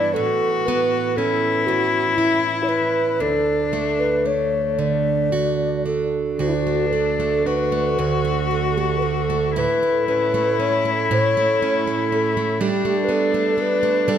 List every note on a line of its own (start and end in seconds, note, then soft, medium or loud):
0.00 0.17 G2 medium
0.00 1.68 E3 medium
0.00 0.27 G3 medium
0.00 0.68 B3 medium
0.00 0.27 D4 medium
0.00 0.13 E4 loud
0.00 0.15 D5 medium
0.14 3.20 A2 medium
0.14 1.18 F#4 loud
0.14 0.68 A4 medium
0.66 3.31 B3 medium
0.66 1.18 B4 medium
1.16 2.67 C#4 medium
1.16 3.21 E4 loud
1.16 1.68 A4 medium
1.67 3.31 E3 medium
1.67 2.12 F#4 medium
2.12 2.18 F#4 medium
2.16 2.64 E4 medium
2.16 3.31 E4 medium
2.63 2.70 C#5 medium
2.68 3.31 C#4 medium
2.68 3.23 B4 medium
3.19 6.38 D2 medium
3.19 4.26 D4 medium
3.19 3.72 A4 medium
3.73 6.66 A3 medium
3.99 4.28 B4 medium
4.24 5.85 A3 medium
4.24 5.85 D4 soft
4.24 4.80 C#5 medium
4.79 8.29 D3 medium
4.79 5.86 D5 medium
5.32 6.40 F#4 medium
5.86 6.92 D4 soft
5.86 6.42 A4 medium
6.39 7.97 D2 medium
6.39 7.47 D4 medium
6.39 7.98 F#4 medium
6.39 6.50 F#4 medium
6.48 6.55 E4 medium
6.54 6.88 F#4 medium
6.67 7.19 A3 soft
6.87 6.94 B4 medium
6.93 7.45 D4 medium
6.93 7.45 A4 medium
7.20 7.72 A3 soft
7.46 8.50 D4 soft
7.46 9.55 F#4 medium
7.46 8.00 B4 medium
7.72 8.24 A3 medium
7.99 9.66 D2 medium
7.99 9.56 F#4 medium
7.99 8.79 A4 medium
8.25 8.77 A3 medium
8.51 9.01 D4 soft
8.77 9.29 A3 soft
8.77 8.99 G4 medium
8.98 9.05 B4 medium
9.02 9.65 D4 soft
9.02 9.55 A4 medium
9.30 9.82 A3 medium
9.55 11.10 A2 medium
9.55 12.61 E4 loud
9.55 11.10 E4 medium
9.55 10.04 B4 medium
9.83 10.34 A3 soft
10.08 10.58 C#4 medium
10.08 10.61 B4 medium
10.34 10.85 A3 soft
10.60 11.61 C#4 soft
10.60 10.90 C#5 medium
10.85 11.37 A3 medium
11.11 12.70 A2 medium
11.11 12.61 E4 medium
11.11 11.83 C#5 medium
11.37 11.87 A3 medium
11.62 12.11 C#4 medium
11.87 12.37 A3 medium
12.12 12.71 C#4 medium
12.12 12.63 A4 medium
12.37 12.85 A3 medium
12.60 14.08 G3 medium
12.60 14.18 D4 medium
12.60 14.07 D4 medium
12.60 13.05 G4 medium
12.85 13.34 A3 medium
13.04 13.13 B4 medium
13.09 13.56 B3 medium
13.09 13.63 A4 medium
13.34 13.83 A3 medium
13.58 14.18 B3 medium
13.58 14.11 B4 medium
13.83 14.18 A3 medium
14.08 14.18 G3 medium
14.08 14.18 D4 medium
14.08 14.18 A4 medium